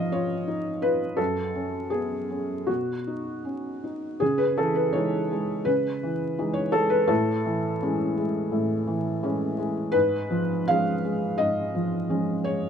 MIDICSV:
0, 0, Header, 1, 2, 480
1, 0, Start_track
1, 0, Tempo, 712589
1, 798, Time_signature, 4, 2, 24, 8
1, 1288, Tempo, 771208
1, 2248, Tempo, 740741
1, 3208, Tempo, 716846
1, 8403, End_track
2, 0, Start_track
2, 0, Title_t, "Felt piano"
2, 0, Program_c, 0, 0
2, 0, Control_c, 0, 64, 127
2, 0, Note_on_c, 0, 44, 54
2, 0, Note_on_c, 0, 53, 46
2, 0, Note_on_c, 0, 63, 41
2, 0, Note_on_c, 0, 65, 46
2, 0, Note_on_c, 0, 71, 82
2, 0, Note_on_c, 0, 75, 93
2, 0, Note_on_c, 0, 77, 91
2, 81, Note_on_c, 0, 73, 79
2, 83, Note_off_c, 0, 75, 0
2, 91, Note_off_c, 0, 65, 0
2, 91, Note_on_c, 0, 65, 44
2, 230, Note_off_c, 0, 53, 0
2, 320, Note_off_c, 0, 63, 0
2, 320, Note_on_c, 0, 63, 41
2, 468, Note_off_c, 0, 65, 0
2, 553, Note_off_c, 0, 71, 0
2, 553, Note_on_c, 0, 71, 85
2, 557, Note_off_c, 0, 73, 0
2, 558, Note_off_c, 0, 63, 0
2, 563, Note_on_c, 0, 65, 45
2, 786, Note_on_c, 0, 69, 77
2, 794, Note_off_c, 0, 71, 0
2, 796, Note_on_c, 0, 42, 47
2, 799, Note_off_c, 0, 65, 0
2, 810, Control_c, 0, 64, 0
2, 812, Note_off_c, 0, 44, 0
2, 816, Note_off_c, 0, 77, 0
2, 904, Control_c, 0, 64, 127
2, 1043, Note_on_c, 0, 61, 42
2, 1281, Note_on_c, 0, 68, 64
2, 1282, Note_off_c, 0, 69, 0
2, 1290, Note_on_c, 0, 59, 30
2, 1430, Note_off_c, 0, 61, 0
2, 1524, Note_off_c, 0, 59, 0
2, 1527, Note_on_c, 0, 61, 37
2, 1741, Note_off_c, 0, 42, 0
2, 1758, Note_on_c, 0, 66, 57
2, 1763, Note_off_c, 0, 68, 0
2, 1765, Note_on_c, 0, 47, 42
2, 1768, Note_off_c, 0, 61, 0
2, 1779, Control_c, 0, 64, 0
2, 1902, Control_c, 0, 64, 127
2, 2010, Note_on_c, 0, 63, 34
2, 2243, Note_on_c, 0, 61, 33
2, 2395, Note_off_c, 0, 63, 0
2, 2489, Note_off_c, 0, 66, 0
2, 2491, Note_off_c, 0, 61, 0
2, 2496, Note_on_c, 0, 63, 33
2, 2709, Note_off_c, 0, 47, 0
2, 2731, Note_on_c, 0, 68, 84
2, 2736, Note_off_c, 0, 63, 0
2, 2742, Note_on_c, 0, 49, 53
2, 2748, Control_c, 0, 64, 0
2, 2847, Note_on_c, 0, 71, 73
2, 2849, Control_c, 0, 64, 127
2, 2851, Note_off_c, 0, 68, 0
2, 2969, Note_off_c, 0, 71, 0
2, 2975, Note_on_c, 0, 69, 80
2, 2983, Note_on_c, 0, 52, 44
2, 3088, Note_on_c, 0, 71, 70
2, 3092, Note_off_c, 0, 69, 0
2, 3201, Note_off_c, 0, 52, 0
2, 3202, Note_on_c, 0, 73, 83
2, 3207, Note_off_c, 0, 71, 0
2, 3211, Note_on_c, 0, 52, 40
2, 3215, Note_on_c, 0, 56, 38
2, 3218, Note_on_c, 0, 63, 43
2, 3428, Note_off_c, 0, 52, 0
2, 3430, Note_off_c, 0, 56, 0
2, 3432, Note_off_c, 0, 63, 0
2, 3460, Note_on_c, 0, 56, 42
2, 3670, Note_off_c, 0, 49, 0
2, 3685, Note_on_c, 0, 71, 79
2, 3690, Note_off_c, 0, 73, 0
2, 3694, Note_on_c, 0, 49, 46
2, 3704, Control_c, 0, 64, 0
2, 3817, Control_c, 0, 64, 127
2, 3843, Note_off_c, 0, 56, 0
2, 3941, Note_on_c, 0, 52, 45
2, 4168, Note_off_c, 0, 52, 0
2, 4178, Note_on_c, 0, 52, 48
2, 4181, Note_on_c, 0, 56, 44
2, 4181, Note_on_c, 0, 63, 49
2, 4279, Note_on_c, 0, 73, 81
2, 4285, Note_off_c, 0, 71, 0
2, 4389, Note_off_c, 0, 52, 0
2, 4390, Note_off_c, 0, 63, 0
2, 4391, Note_off_c, 0, 56, 0
2, 4403, Note_on_c, 0, 69, 95
2, 4404, Note_off_c, 0, 73, 0
2, 4413, Note_on_c, 0, 56, 49
2, 4521, Note_on_c, 0, 71, 81
2, 4527, Note_off_c, 0, 69, 0
2, 4624, Note_off_c, 0, 49, 0
2, 4640, Note_on_c, 0, 69, 85
2, 4645, Note_on_c, 0, 45, 64
2, 4647, Note_off_c, 0, 71, 0
2, 4653, Note_off_c, 0, 56, 0
2, 4665, Control_c, 0, 64, 0
2, 4787, Control_c, 0, 64, 127
2, 4894, Note_on_c, 0, 52, 52
2, 5127, Note_off_c, 0, 52, 0
2, 5137, Note_on_c, 0, 52, 47
2, 5145, Note_on_c, 0, 56, 46
2, 5145, Note_on_c, 0, 61, 54
2, 5355, Note_off_c, 0, 52, 0
2, 5359, Note_off_c, 0, 61, 0
2, 5360, Note_off_c, 0, 56, 0
2, 5374, Note_on_c, 0, 56, 51
2, 5587, Note_off_c, 0, 45, 0
2, 5607, Note_on_c, 0, 45, 56
2, 5753, Note_off_c, 0, 56, 0
2, 5843, Note_on_c, 0, 52, 51
2, 6071, Note_off_c, 0, 52, 0
2, 6081, Note_on_c, 0, 52, 50
2, 6085, Note_on_c, 0, 56, 50
2, 6088, Note_on_c, 0, 61, 56
2, 6295, Note_off_c, 0, 52, 0
2, 6297, Note_off_c, 0, 56, 0
2, 6299, Note_off_c, 0, 61, 0
2, 6315, Note_off_c, 0, 69, 0
2, 6317, Note_on_c, 0, 56, 49
2, 6527, Note_off_c, 0, 45, 0
2, 6543, Note_on_c, 0, 71, 98
2, 6554, Note_on_c, 0, 44, 62
2, 6558, Note_off_c, 0, 56, 0
2, 6570, Control_c, 0, 64, 0
2, 6692, Control_c, 0, 64, 127
2, 6800, Note_on_c, 0, 53, 48
2, 7049, Note_off_c, 0, 53, 0
2, 7052, Note_off_c, 0, 71, 0
2, 7052, Note_on_c, 0, 77, 99
2, 7059, Note_on_c, 0, 53, 48
2, 7062, Note_on_c, 0, 56, 45
2, 7063, Note_on_c, 0, 61, 49
2, 7277, Note_off_c, 0, 53, 0
2, 7278, Note_off_c, 0, 56, 0
2, 7279, Note_off_c, 0, 61, 0
2, 7298, Note_on_c, 0, 56, 44
2, 7504, Note_off_c, 0, 44, 0
2, 7521, Note_on_c, 0, 75, 88
2, 7530, Note_off_c, 0, 77, 0
2, 7533, Note_on_c, 0, 44, 51
2, 7671, Note_off_c, 0, 56, 0
2, 7769, Note_on_c, 0, 53, 42
2, 7991, Note_off_c, 0, 53, 0
2, 8001, Note_on_c, 0, 53, 43
2, 8004, Note_on_c, 0, 56, 42
2, 8005, Note_on_c, 0, 61, 45
2, 8219, Note_off_c, 0, 53, 0
2, 8220, Note_off_c, 0, 56, 0
2, 8221, Note_off_c, 0, 61, 0
2, 8235, Note_on_c, 0, 73, 83
2, 8237, Note_off_c, 0, 75, 0
2, 8241, Note_on_c, 0, 56, 38
2, 8403, Note_off_c, 0, 44, 0
2, 8403, Note_off_c, 0, 56, 0
2, 8403, Note_off_c, 0, 73, 0
2, 8403, End_track
0, 0, End_of_file